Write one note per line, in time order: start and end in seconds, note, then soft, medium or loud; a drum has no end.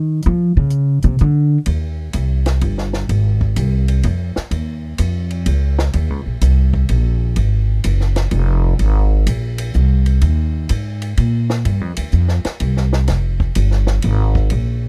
0.00 0.22 D#3 medium
0.22 0.56 F3 loud
0.22 closed hi-hat soft
0.57 1.00 C#3 medium
0.70 closed hi-hat soft
1.02 1.19 C3 medium
1.02 closed hi-hat soft
1.19 1.57 D3 medium
1.19 closed hi-hat soft
1.66 2.13 D#2 medium
1.66 ride medium
2.13 2.60 C2 medium
2.13 hi-hat pedal medium
2.13 ride medium
2.46 snare medium
2.46 ride soft
2.61 3.08 G1 medium
2.61 ride medium
2.78 snare soft
2.93 snare soft
3.09 3.55 G#1 medium
3.09 ride medium
3.41 kick soft
3.56 4.03 C2 medium
3.56 hi-hat pedal medium
3.56 ride medium
3.88 ride medium
4.03 4.34 F2 medium
4.03 ride medium
4.36 muted upright bass stroke soft
4.36 snare soft
4.51 4.97 D#2 medium
4.51 ride medium
4.98 5.45 F2 medium
4.98 hi-hat pedal medium
4.98 ride medium
5.30 ride soft
5.46 5.93 C#2 medium
5.46 ride medium
5.79 snare medium
5.93 6.10 D#2 medium
5.93 ride medium
6.10 6.26 C#2 medium
6.26 6.41 A#1 medium
6.41 6.88 C2 medium
6.41 hi-hat pedal medium
6.41 ride medium
6.73 kick medium
6.89 7.36 A#1 medium
6.89 ride medium
7.36 7.83 G#1 medium
7.36 ride medium
7.84 8.31 F#1 medium
7.84 hi-hat pedal medium
7.84 ride medium
8.01 snare soft
8.16 snare soft
8.16 ride soft
8.31 8.78 F1 medium
8.31 ride medium
8.79 9.26 G#1 medium
8.79 ride medium
9.27 9.73 A#1 medium
9.27 hi-hat pedal medium
9.27 ride medium
9.58 ride medium
9.74 10.21 C2 medium
9.74 hi-hat pedal medium
10.06 ride soft
10.21 10.68 D#2 medium
10.21 ride medium
10.69 11.16 G#2 medium
10.69 hi-hat pedal medium
10.69 ride medium
11.02 ride soft
11.17 11.64 A#2 medium
11.17 ride medium
11.50 snare medium
11.65 11.81 G2 medium
11.65 ride medium
11.81 11.97 F2 medium
11.97 12.12 D2 medium
11.97 ride medium
12.12 12.43 F2 medium
12.12 hi-hat pedal medium
12.28 snare soft
12.45 muted upright bass stroke soft
12.45 snare soft
12.45 ride soft
12.60 13.07 C2 medium
12.60 ride medium
12.77 snare soft
12.93 snare soft
13.08 13.54 F1 medium
13.08 snare soft
13.08 ride medium
13.40 kick medium
13.55 14.02 G1 medium
13.55 hi-hat pedal medium
13.55 ride medium
13.71 snare soft
13.87 snare soft
14.02 14.50 G#1 medium
14.02 ride medium
14.35 kick medium
14.50 14.89 A#1 medium
14.50 ride medium